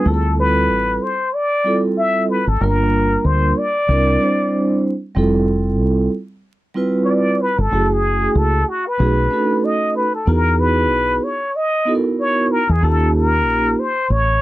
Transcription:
0.04 D2 G3 C4 E4 F4 G#4 A4
0.14 A4
0.39 B4
0.69 A1
1.03 C5
1.34 D5
1.64 G3 C4 E4 F4 A4
1.98 E5
2.30 B4
2.47 G#1 A4
2.60 G1 G3 A#3 D4 F4 A#4
3.25 D2 C5
3.58 D5
3.88 C2 G3 C4 D4 E4 A#4
4.19 G3 C4 D4 E4 C5
5.15 F1 G3 C4 E4 F4 A4
5.80 C2
6.74 G3 C4 E4 F4 B4
7.05 C#5
7.10 D5
7.41 B4
7.58 G1 A4
7.70 F#1 A3 C#4 E4 F#4 G#4
7.93 G#4
8.35 C#2 A4
8.69 F#4
8.88 B4
8.98 B1 A3 C#4 D#4 F#4 G#4
9.30 A3 C#4 D4 F#4 A4
9.39 D#4
9.65 D#5
9.96 B4
10.15 A4
10.26 E2 B3 D#4 E4 F#4 G#4 A#4
10.60 B4
10.91 B1
11.23 C#5
11.56 D#5
11.85 B3 D#4 E4 F#4 A4
11.95 A#4
12.20 C#5
12.52 A#4
12.69 E2 G#4
12.81 D#2 A#3 C#4 D#4 F4 G4 A4
13.15 A#4
13.46 A#1
13.79 C5
14.10 A1 C#5

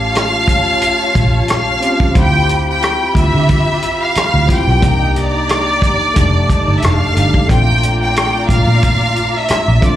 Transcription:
Already playing: A1 A3 C#4 F4 G4 C#5 F5 A5
0.15 cross-stick, closed hi-hat
0.48 kick, closed hi-hat
0.82 closed hi-hat
1.15 A#1, kick, closed hi-hat
1.48 F5, cross-stick, closed hi-hat
1.80 C4 C#4 F4 G4, closed hi-hat
2.00 kick
2.14 D2 C4 E4 F4 G4 B5, kick, closed hi-hat
2.19 G5
2.49 closed hi-hat
2.70 G5
2.82 cross-stick, closed hi-hat
3.15 D2 E5, kick, closed hi-hat
3.34 D3
3.49 kick, closed hi-hat
3.82 closed hi-hat
4.03 F5
4.15 muted fingered electric bass stroke, cross-stick, closed hi-hat
4.34 D2
4.47 C4 E4 F4 G4, kick, closed hi-hat
4.52 G5
4.67 B1, cross-stick
4.81 C2 A#3 D4 D#4 G4 A#5, kick, closed hi-hat
5.16 D5, closed hi-hat
5.49 cross-stick, closed hi-hat
5.82 kick, closed hi-hat
6.14 F1 A3 D4 D#4 G4 D5 A5, kick, closed hi-hat
6.50 kick, closed hi-hat
6.68 G1
6.78 E5
6.82 F1 F5, cross-stick, closed hi-hat
7.14 G1 A3 D4 D#4 G4, closed hi-hat
7.34 kick
7.47 A#1 A3 C4 D4 F4 D5 G5 A#5, kick, closed hi-hat
7.83 closed hi-hat
8.02 G5
8.16 cross-stick, closed hi-hat
8.49 A#1 F5, kick, closed hi-hat
8.67 A#2
8.83 kick, closed hi-hat
9.16 closed hi-hat
9.37 E5
9.48 muted fingered electric bass stroke, cross-stick, closed hi-hat
9.68 A#1
9.81 A3 C4 D4 F4 D5, kick, closed hi-hat

